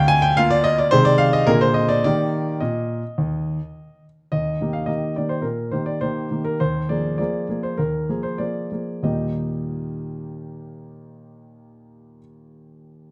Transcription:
0.00 0.87 D2 medium
0.00 0.22 G5 loud
0.08 0.22 G#5 loud
0.22 0.36 G5 loud
0.37 0.88 A#3 medium
0.37 0.88 F4 medium
0.37 0.50 F5 loud
0.51 0.64 D5 loud
0.64 0.77 D#5 loud
0.78 0.91 D5 loud
0.91 1.46 C3 medium
0.91 1.43 D#3 medium
0.91 1.43 G#3 medium
0.91 1.44 G#4 medium
0.91 1.05 C5 loud
1.05 1.19 D5 loud
1.18 1.32 F5 loud
1.33 1.47 D#5 loud
1.47 2.02 A#2 medium
1.47 2.00 D3 medium
1.47 2.00 A#3 medium
1.47 2.00 G#4 medium
1.47 1.61 A#4 loud
1.61 1.75 C5 loud
1.74 1.89 D#5 medium
1.89 2.03 D5 medium
2.04 2.45 D#3 medium
2.04 2.50 A#3 medium
2.04 2.50 G4 medium
2.04 2.61 D5 loud
2.60 3.01 A#2 medium
2.60 4.03 D#5 medium
3.18 3.58 D#2 medium
4.32 4.59 D#2 soft
4.32 4.74 D#5 medium
4.61 4.86 D#3 soft
4.61 4.86 A#3 soft
4.61 4.86 G4 soft
4.73 4.88 F5 medium
4.86 5.13 D#3 soft
4.86 5.14 A#3 soft
4.86 5.14 G4 soft
4.86 5.16 D#5 medium
5.16 5.43 D#3 soft
5.16 5.43 A#3 soft
5.16 5.43 G4 soft
5.16 5.31 D5 medium
5.29 5.44 C5 medium
5.42 5.72 A#2 soft
5.42 5.72 A#4 medium
5.71 5.99 D#3 soft
5.71 5.99 A#3 soft
5.71 5.99 G4 soft
5.71 5.87 C5 soft
5.86 6.01 D5 medium
6.01 6.28 D#3 soft
6.01 6.28 A#3 soft
6.01 6.29 G4 soft
6.01 6.45 C5 medium
6.31 6.57 D#3 soft
6.31 6.57 A#3 soft
6.31 6.57 G4 soft
6.45 6.59 A#4 medium
6.60 6.89 D#2 medium
6.60 6.89 C5 medium
6.89 7.16 F3 soft
6.89 7.16 A#3 soft
6.89 7.16 G#4 soft
6.89 7.16 D5 medium
7.18 7.46 F3 soft
7.18 7.46 A#3 soft
7.18 7.46 G#4 soft
7.18 7.63 D5 medium
7.49 7.76 F3 soft
7.49 7.76 A#3 soft
7.49 7.76 G#4 soft
7.63 7.78 C5 medium
7.78 8.09 D#2 soft
7.78 8.24 A#4 medium
8.09 8.38 F3 soft
8.09 8.38 A#3 soft
8.09 8.38 G#4 soft
8.23 8.40 C5 medium
8.38 8.69 F3 soft
8.38 8.69 A#3 soft
8.38 8.69 G#4 soft
8.38 9.04 D5 medium
8.72 9.01 F3 soft
8.72 9.02 A#3 soft
8.72 9.02 G#4 soft
9.03 12.18 D#2 soft
9.03 12.18 A#2 soft
9.03 12.18 G3 soft
9.03 12.18 A#3 soft
9.03 12.19 D#4 soft
9.03 12.19 G4 soft
9.03 12.18 D#5 soft

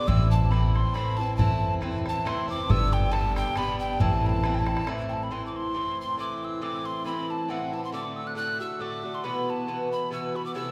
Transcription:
0.07 0.82 A1 loud
0.07 0.50 A2 medium
0.07 0.51 E3 medium
0.07 0.52 C4 medium
0.07 0.52 E4 medium
0.07 0.30 E6 loud
0.07 bodhran medium
0.31 0.52 A5 medium
0.51 0.94 A2 medium
0.51 0.94 E3 medium
0.51 0.95 C4 medium
0.51 0.96 E4 medium
0.51 0.77 B5 medium
0.51 bodhran medium
0.64 bodhran soft
0.75 0.96 C6 medium
0.75 bodhran medium
0.94 1.18 A2 medium
0.94 1.19 E3 medium
0.94 1.19 C4 medium
0.94 1.17 E4 medium
0.94 1.19 B5 medium
0.94 bodhran medium
1.17 1.37 E3 soft
1.17 1.38 C4 soft
1.17 1.38 E4 soft
1.17 1.36 A5 medium
1.37 2.12 E2 loud
1.37 1.80 A2 medium
1.37 1.80 E3 medium
1.37 1.81 C4 medium
1.37 1.82 E4 medium
1.37 1.74 A5 medium
1.37 bodhran medium
1.81 2.05 A2 medium
1.81 2.05 E3 medium
1.81 2.05 C4 medium
1.81 2.04 E4 medium
1.81 bodhran medium
1.95 bodhran soft
2.05 2.25 E3 soft
2.05 2.25 C4 soft
2.05 2.26 E4 soft
2.05 2.29 A5 medium
2.05 bodhran medium
2.25 2.49 A2 medium
2.25 2.49 E3 medium
2.25 2.48 C4 medium
2.25 2.47 E4 medium
2.25 2.49 C6 medium
2.25 bodhran medium
2.48 2.70 E3 soft
2.48 2.69 C4 medium
2.48 2.69 E4 medium
2.48 2.72 D6 loud
2.69 3.43 G1 loud
2.69 3.10 G2 medium
2.69 3.11 D3 medium
2.69 3.11 B3 medium
2.69 3.12 D4 medium
2.69 2.94 E6 loud
2.69 bodhran medium
2.93 3.13 G5 loud
3.11 3.55 G2 medium
3.11 3.56 D3 medium
3.11 3.56 B3 medium
3.11 3.56 D4 medium
3.11 3.36 A5 loud
3.11 bodhran medium
3.25 bodhran soft
3.36 3.59 G5 medium
3.36 bodhran medium
3.56 3.99 G2 medium
3.56 4.00 D3 medium
3.56 4.01 B3 medium
3.56 4.01 D4 medium
3.56 3.79 B5 loud
3.56 bodhran medium
3.79 4.02 G5 medium
4.00 4.74 A1 loud
4.00 4.42 A2 medium
4.00 4.43 E3 medium
4.00 4.45 C4 medium
4.00 4.45 E4 medium
4.00 4.28 A5 medium
4.00 bodhran medium
4.26 4.56 A5 medium
4.26 4.31 B5 medium
4.43 4.66 A2 medium
4.43 4.67 E3 medium
4.43 4.66 C4 medium
4.43 4.65 E4 medium
4.43 bodhran medium
4.55 4.60 G5 medium
4.55 bodhran soft
4.59 4.87 A5 loud
4.66 4.86 E3 soft
4.66 4.87 C4 soft
4.66 4.86 E4 soft
4.66 bodhran medium
4.77 bodhran medium
4.87 5.29 A2 medium
4.87 5.31 E3 medium
4.87 5.31 C4 medium
4.87 5.32 E4 medium
4.87 bodhran medium
5.09 5.15 G5 soft
5.14 5.25 A5 medium
5.23 5.33 B5 medium
5.31 5.73 A2 medium
5.31 5.73 E3 medium
5.31 5.74 C4 medium
5.31 5.75 E4 medium
5.31 5.46 C6 medium
5.46 5.58 D6 soft
5.56 5.99 C6 medium
5.74 6.17 A2 medium
5.74 6.17 E3 medium
5.74 6.18 C4 medium
5.74 6.19 E4 medium
6.01 6.18 C6 medium
6.18 6.60 A2 medium
6.18 6.61 E3 medium
6.18 6.61 C4 medium
6.18 6.61 E4 medium
6.18 6.46 D6 medium
6.44 6.65 E6 medium
6.62 7.03 A2 medium
6.62 7.04 E3 medium
6.62 7.05 C4 medium
6.62 7.05 E4 medium
6.62 6.87 D6 medium
6.86 7.05 C6 medium
7.04 7.47 A2 medium
7.04 7.49 E3 medium
7.04 7.49 C4 medium
7.04 7.50 E4 medium
7.04 7.32 B5 medium
7.30 7.52 A5 medium
7.49 7.72 A2 medium
7.49 7.73 E3 medium
7.49 7.72 C4 medium
7.49 7.71 E4 medium
7.49 7.75 F#5 medium
7.72 7.93 E3 soft
7.72 7.93 C4 soft
7.72 7.92 E4 soft
7.72 7.83 A5 medium
7.85 7.93 C6 medium
7.92 8.34 A2 medium
7.92 8.35 D3 medium
7.92 8.35 A3 medium
7.92 8.37 F#4 medium
7.92 8.18 D6 medium
8.17 8.29 E6 medium
8.27 8.36 F#6 medium
8.35 8.59 A2 medium
8.35 8.60 D3 medium
8.35 8.59 A3 medium
8.35 8.58 F#4 medium
8.35 8.58 F#6 medium
8.60 8.79 D3 soft
8.60 8.80 A3 soft
8.60 8.80 F#4 soft
8.60 8.83 E6 medium
8.79 9.03 A2 medium
8.79 9.04 D3 medium
8.79 9.03 A3 medium
8.79 9.02 F#4 medium
8.79 9.16 D6 medium
9.03 9.24 D3 soft
9.03 9.24 A3 soft
9.03 9.24 F#4 soft
9.15 9.26 C6 medium
9.24 9.66 B2 medium
9.24 9.68 E3 medium
9.24 9.67 B3 medium
9.24 9.68 F#4 medium
9.24 9.51 B5 medium
9.50 9.92 A5 medium
9.67 10.10 B2 soft
9.67 10.11 E3 medium
9.67 10.11 B3 medium
9.67 10.12 F#4 medium
9.92 10.11 B5 medium
10.11 10.34 B2 medium
10.11 10.35 E3 medium
10.11 10.35 B3 medium
10.11 10.33 F#4 medium
10.11 10.37 E6 medium
10.34 10.54 E3 soft
10.34 10.55 B3 soft
10.34 10.55 F#4 soft
10.34 10.45 B5 medium
10.46 10.54 D6 medium
10.55 10.71 C3 medium
10.55 10.71 E3 medium
10.55 10.71 A3 medium
10.55 10.71 E4 medium
10.55 10.71 E6 medium

